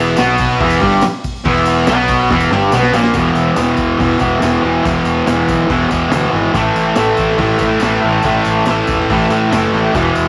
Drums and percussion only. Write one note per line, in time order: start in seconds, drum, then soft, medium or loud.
0.17 snare loud
0.17 open hi-hat medium
0.17 tambourine medium
0.38 kick medium
0.38 open hi-hat medium
0.38 tambourine medium
0.60 kick loud
0.60 open hi-hat medium
0.70 tambourine medium
0.81 kick medium
0.81 open hi-hat medium
0.92 tambourine soft
1.01 snare loud
1.01 open hi-hat medium
1.01 tambourine medium
1.24 kick medium
1.24 open hi-hat medium
1.24 tambourine medium
1.36 tambourine soft
1.45 kick loud
1.45 open hi-hat medium
1.45 tambourine soft
1.55 tambourine soft
1.66 open hi-hat medium
1.66 tambourine medium
1.87 snare loud
1.87 open hi-hat medium
1.87 tambourine loud
2.08 kick medium
2.08 open hi-hat medium
2.08 tambourine medium
2.29 kick loud
2.29 snare medium
2.29 tambourine soft
2.40 tambourine medium
2.50 snare medium
2.50 tambourine soft
2.62 tambourine soft
2.72 snare medium
2.72 tambourine loud
2.83 snare medium
2.93 snare loud
2.93 tambourine medium
3.03 snare medium
3.03 tambourine soft
3.14 kick loud
3.14 open hi-hat medium
3.14 tambourine medium
3.35 tambourine medium
3.56 snare loud
3.56 open hi-hat medium
3.56 tambourine loud
3.77 kick medium
3.77 tambourine medium
3.99 kick loud
3.99 open hi-hat medium
3.99 tambourine soft
4.19 kick medium
4.19 tambourine medium
4.42 snare loud
4.42 open hi-hat medium
4.42 tambourine medium
4.85 kick loud
4.85 open hi-hat medium
4.85 tambourine medium
5.05 tambourine medium
5.27 snare loud
5.27 open hi-hat medium
5.27 tambourine medium
5.48 kick medium
5.48 tambourine medium
5.70 kick loud
5.70 open hi-hat medium
5.70 tambourine soft
5.91 kick medium
5.91 tambourine medium
6.12 snare loud
6.12 open hi-hat medium
6.12 tambourine medium
6.54 kick loud
6.54 open hi-hat medium
6.54 tambourine medium
6.76 tambourine medium
6.96 snare loud
6.96 open hi-hat medium
6.96 tambourine medium
7.17 kick medium
7.17 tambourine medium
7.29 snare soft
7.38 kick loud
7.38 open hi-hat medium
7.38 tambourine soft
7.59 kick medium
7.59 tambourine medium
7.80 snare loud
7.80 open hi-hat medium
7.80 tambourine medium
8.22 kick loud
8.22 open hi-hat medium
8.22 tambourine medium
8.45 tambourine medium
8.65 snare loud
8.65 open hi-hat medium
8.65 tambourine medium
8.87 kick medium
8.87 tambourine medium
9.01 snare soft
9.10 kick loud
9.10 open hi-hat medium
9.10 tambourine soft
9.30 tambourine medium
9.52 snare loud
9.52 open hi-hat medium
9.52 tambourine medium
9.74 tambourine soft
9.95 kick loud
9.95 open hi-hat medium
9.95 tambourine medium
10.15 tambourine medium